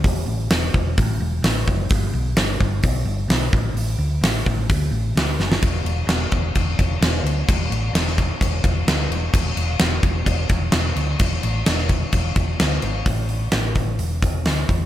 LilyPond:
<<
  \new Staff \with { instrumentName = "Fingered electric bass" } { \clef bass \time 4/4 \key a \major \tempo 4 = 129 e,,8 a,,8 e,,8 e,,8 a,,8 e,,8 a,,8 fis,,8 | g,,8 b,,8 g,,8 g,,8 b,,8 g,,8 b,,8 a,,8 | a,,8 d,8 a,,8 a,,8 d,8 a,,8 d,8 fis,,8 | e,,8 e,,8 e,,8 e,,8 e,,8 e,,8 e,,8 d,8 |
e,,8 a,,8 e,,4 e,,8 e,,8 d,8 e,,8 | e,,8 e,,8 e,,8 e,,8 e,,8 e,,8 e,,8 d,8 | e,,8 a,,8 e,,4 e,,8 e,,8 d,8 gis,,8 | a,,4 a,,4 e,,4 d,8 e,8 | }
  \new DrumStaff \with { instrumentName = "Drums" } \drummode { \time 4/4 <hho bd>4 <hho sn>8 bd8 <hho bd>4 <hho sn>8 bd8 | <hho bd>4 <hho sn>8 bd8 <hho bd>4 <hho sn>8 bd8 | hho4 <hho sn>8 bd8 <hho bd>4 <hho sn>8 sn16 sn16 | <cymc bd>8 cymc8 <cymc sn>8 <cymc bd>8 <cymc bd>8 <cymc bd>8 <cymc sn>8 cymc8 |
<cymc bd>8 cymc8 <cymc sn>16 sn16 <cymc bd>8 <cymc bd>8 <cymc bd>8 <cymc sn>8 cymc8 | <cymc bd>8 cymc8 <cymc sn>8 <cymc bd>8 <cymc bd>8 <cymc bd>8 <cymc sn>8 cymc8 | <cymc bd>8 cymc8 <cymc sn>16 sn16 <cymc bd>8 <cymc bd>8 <cymc bd>8 <cymc sn>8 cymc8 | <hho bd>8 hho8 <hho sn>8 <hho bd>8 hho8 <hho bd>8 <hho sn>8 <hho bd>8 | }
>>